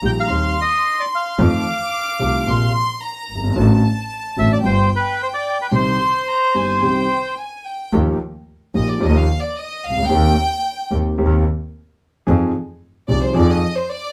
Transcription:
Already playing: A#5
0.02 A#1 A#2 D#3 G3 A#3 G4 G5
0.20 F5
0.28 D#2 D#3 G3 C4 G4 C6
0.61 D#5
1.00 D5
1.15 F5
1.38 F2 D#3 F3 A3 C4 F4 D6
2.19 C2 C3 D#3 A3 C4 F4
2.47 A#1 A#2 C3 F3 A#3 F4 C6
3.02 A#5
3.29 G1
3.35 F#1
3.44 G1
3.50 G#1
3.56 A1 A2 D3 A3 C4 F#4 A5
4.36 A1 A2 D3 A3 C4 F#4 E5
4.52 D5
4.62 G1 G2 D3 G3 B3 F4 C5 G5
4.96 B4
5.23 C5
5.34 D5
5.61 B4
5.71 C2 C3 D#3 G3 C4 G4 C5 C6
6.29 A#5
6.54 G1 G2 D#3 G3 C4 G4 G#5
6.82 C2 C3 D#3 G3 C4 G4 G5
7.38 G#5
7.66 G5
7.92 D#2 D#3 F3 A#3 D#4 G4
8.74 A#1 A#2 F3 A#3 D#4 G4 D#5
8.89 D5
9.00 D#2 D#3 F3 A#3 D#4 G4 D#5
9.16 F5
9.42 D5
9.56 D#5
9.83 C#2 F5
9.90 C2
9.97 C#2
10.03 D2
10.09 D#2 D#3 A#3 C4 G4 G5
10.90 D#2 D#3 A#3 C4 G4
11.18 D#2 D#3 A#3 C4 G4
12.27 F2 F3 C4 D#4 G#4
13.08 C2 C3 F3 C4 D#4 G#4 D5
13.22 C5
13.34 F2 F3 C4 D#4 G#4 D5
13.51 D#5
13.76 C5
13.89 D5

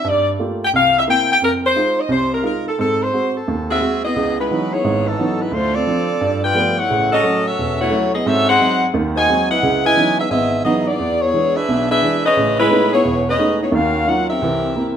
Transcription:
0.04 G2 G3
0.09 D5
0.39 A3 A#3 F4 G4
0.65 G5
0.73 C2 F5
0.99 E5
1.08 A#3 C4 E4 G5
1.32 G5
1.42 F2 A#4
1.66 C5
1.76 G#3 D#4 F4
2.00 D#5
2.09 C2 C3 C5
2.34 A#4
2.43 G#3 D#4 F4 A#4
2.68 A4
2.79 G#2 C4 A4
3.03 C5
3.13 G#3 C4 F#4
3.36 A4
3.48 D#2
3.71 C4 F#4 G#4 E5
3.81 G#3 C4 F#4
4.05 B3 E4 G#4 D#5
4.16 C#2 C#3
4.40 G#3 D#4 E4 B4
4.51 E3 F#3 B3 C#4 D#4
4.73 B3 E4 G#4 C#5
4.84 G#1 G#2
5.07 E3 B3 D#4 A4
5.19 E3 F#3 B3 C#4 D#4
5.41 G#3 D#4 E4 B4
5.52 D2 A3 D4 F4 C5
5.75 C4 F4 A4 D5
5.87 F3 C4 D4
6.21 G2
6.44 F4 B4 D5 G5
6.55 F3 G3 A3 B3
6.78 E4 A4 C#5 F#5
6.90 A1 C#3
7.12 C#4 F#4 A4 D#5
7.23 F#3 A3 C#4
7.46 C#4 F#4 A4 E5
7.58 E1
7.81 A3 E4 F#4 C#5
7.91 F#3 A3 C#4
8.14 B3 E4 G#4 D#5
8.26 G#2 C4 C#4 F#4 A4 E5
8.49 D#4 G#4 C5 F#5
8.60 F#3 G#3 C4
8.94 D#2 D#3
9.16 F#4 C5 D#5 G#5
9.28 F#3 G#3 C4
9.51 E4 B4 D#5 F#5
9.63 C#2 C#3
9.85 E4 B4 D#5 G#5
9.96 E3 F#3 B3 C#4 D#4
10.20 B3 D#4 G#4 E5
10.31 G#1 B3 G#4 D#5 E5
10.65 E3 F#3 B3 C#4 D#4 E4 G#4 D#5
10.87 B3 E4 G#4 D5
10.99 E2
11.21 B3 E4 G#4 C#5
11.34 E3 G#3 D4
11.56 D4 G#4 B4 E5
11.69 B1 B2
11.90 D4 G#4 B4 E5
12.02 E3 G#3 D4
12.25 C#4 G#4 B4 D#5
12.37 A1 C#3
12.60 G#3 C#4 E4 B4
12.71 G#3 A3 B3 C#4 D#4
12.93 B3 E4 G#4 C#5
13.04 E1
13.29 C#4 G#4 B4 D#5
13.38 G#3 A3 B3 C#4 D#4
13.63 B3 E4 G#4 C#5
13.72 D#2 D#3 C#4 F#4 A#4 F5
14.07 F#3 C#4 D#4 F4 A#4 F#5
14.30 C4 G4 A#4 E5
14.42 C2 E3
14.76 A#3 C4 E4

